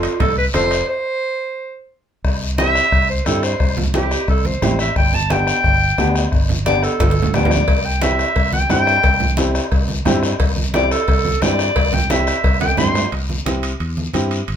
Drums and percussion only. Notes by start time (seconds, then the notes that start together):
0.03 bombo rim, high timbale, short guiro
0.20 bombo low, bombo rim, high conga, low conga, high timbale, long guiro
0.54 bombo rim, high conga, high timbale, short guiro
0.71 bombo rim, high timbale, short guiro
2.24 bombo low, bombo rim, high conga, long guiro
2.58 bombo rim, high conga, short guiro
2.75 bombo rim, short guiro
2.92 bombo low, bombo rim, high conga, long guiro
3.26 bombo rim, high conga, short guiro
3.43 bombo rim, short guiro
3.60 bombo low, bombo rim, high conga, long guiro
3.77 high conga, low conga
3.94 bombo rim, high conga, short guiro
4.11 bombo rim, short guiro
4.28 bombo low, bombo rim, high conga, long guiro
4.45 high conga
4.62 bombo rim, high conga, low conga, short guiro
4.79 bombo rim, short guiro
4.96 bombo low, bombo rim, high conga, long guiro
5.13 high conga
5.30 bombo rim, high conga, short guiro
5.47 bombo rim, short guiro
5.64 bombo low, bombo rim, high conga, long guiro
5.98 bombo rim, high conga, short guiro
6.15 bombo rim, short guiro
6.32 bombo low, bombo rim, high conga, long guiro
6.49 low conga
6.66 bombo rim, high conga, short guiro
6.83 bombo rim, short guiro
7.00 bombo low, bombo rim, high conga, long guiro
7.11 high conga
7.22 low conga
7.34 bombo rim, low conga, short guiro
7.45 low conga
7.51 bombo rim, short guiro
7.57 low conga
7.68 bombo low, bombo rim, cowbell, high conga, long guiro
8.02 bombo rim, high conga, short guiro
8.19 bombo rim, short guiro
8.36 bombo low, bombo rim, cowbell, high conga, long guiro
8.53 high conga
8.70 bombo rim, high conga, low timbale, short guiro
8.87 bombo rim, short guiro
9.03 bombo low, bombo rim, cowbell, high conga, long guiro
9.20 low conga
9.37 bombo rim, high conga, short guiro
9.55 bombo rim, short guiro
9.72 bombo low, bombo rim, cowbell, high conga, long guiro
9.88 high conga
10.05 bombo rim, high conga, low conga, low timbale, short guiro
10.23 bombo rim, short guiro
10.40 bombo low, bombo rim, cowbell, high conga, long guiro
10.56 high conga
10.74 bombo rim, high conga, short guiro
10.91 bombo rim, short guiro
11.08 bombo low, bombo rim, cowbell, high conga, long guiro
11.25 high conga
11.42 bombo rim, high conga, low timbale, short guiro
11.59 bombo rim, short guiro
11.76 bombo low, bombo rim, cowbell, high conga, long guiro
11.93 high conga, low conga
12.10 bombo rim, high conga, short guiro
12.27 bombo rim, short guiro
12.44 bombo low, bombo rim, cowbell, high conga, long guiro
12.61 high conga, high timbale
12.77 bombo rim, high conga, low conga, low timbale, short guiro
12.95 bombo rim, low timbale, short guiro
13.12 high conga, high timbale, long guiro
13.29 high conga
13.46 high conga, high timbale, short guiro
13.63 high timbale, short guiro
13.80 high conga, high timbale, long guiro
13.97 high conga
14.13 high conga, high timbale, short guiro
14.31 high timbale, short guiro
14.48 high conga, high timbale, long guiro